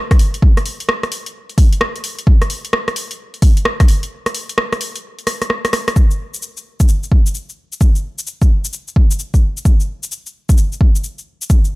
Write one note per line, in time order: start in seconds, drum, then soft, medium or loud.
0.11 kick loud
0.11 cross-stick medium
0.11 closed hi-hat medium
0.19 open hi-hat medium
0.34 closed hi-hat medium
0.42 kick loud
0.57 cross-stick medium
0.57 closed hi-hat medium
0.66 open hi-hat loud
0.80 closed hi-hat medium
0.89 cross-stick loud
1.03 cross-stick medium
1.03 closed hi-hat soft
1.12 open hi-hat medium
1.26 closed hi-hat medium
1.49 closed hi-hat soft
1.58 kick loud
1.58 open hi-hat loud
1.73 closed hi-hat medium
1.81 cross-stick loud
1.96 closed hi-hat medium
2.04 open hi-hat medium
2.19 closed hi-hat medium
2.27 kick loud
2.42 cross-stick medium
2.42 closed hi-hat medium
2.50 open hi-hat loud
2.65 closed hi-hat medium
2.73 cross-stick loud
2.88 cross-stick medium
2.88 closed hi-hat soft
2.96 open hi-hat loud
3.11 closed hi-hat medium
3.34 closed hi-hat soft
3.42 kick loud
3.42 open hi-hat loud
3.57 closed hi-hat medium
3.65 cross-stick loud
3.80 kick loud
3.80 cross-stick medium
3.80 closed hi-hat medium
3.88 open hi-hat loud
4.03 closed hi-hat medium
4.26 cross-stick medium
4.26 closed hi-hat medium
4.34 open hi-hat loud
4.49 closed hi-hat medium
4.58 cross-stick loud
4.72 cross-stick medium
4.72 closed hi-hat soft
4.81 open hi-hat loud
4.96 closed hi-hat medium
5.19 closed hi-hat soft
5.27 cross-stick medium
5.27 open hi-hat loud
5.42 cross-stick medium
5.42 closed hi-hat medium
5.50 cross-stick medium
5.65 cross-stick medium
5.65 closed hi-hat medium
5.73 cross-stick medium
5.73 open hi-hat loud
5.88 cross-stick medium
5.88 closed hi-hat medium
5.96 kick loud
5.96 shaker soft
6.11 shaker soft
6.34 shaker medium
6.42 shaker soft
6.57 shaker soft
6.80 kick loud
6.80 shaker medium
6.88 shaker soft
7.03 shaker soft
7.12 kick loud
7.26 shaker medium
7.35 shaker soft
7.49 shaker soft
7.72 shaker medium
7.81 kick loud
7.81 shaker soft
7.95 shaker soft
8.19 shaker medium
8.27 shaker soft
8.42 kick loud
8.42 shaker soft
8.65 shaker medium
8.73 shaker soft
8.88 shaker soft
8.96 kick loud
9.11 shaker medium
9.19 shaker soft
9.34 kick medium
9.34 shaker soft
9.57 shaker medium
9.65 kick loud
9.65 shaker soft
9.80 shaker soft
10.03 shaker medium
10.12 shaker soft
10.26 shaker soft
10.49 kick loud
10.49 shaker medium
10.58 shaker soft
10.72 shaker soft
10.81 kick loud
10.95 shaker medium
11.04 shaker soft
11.18 shaker soft
11.42 shaker medium
11.50 kick loud
11.50 shaker soft
11.65 shaker soft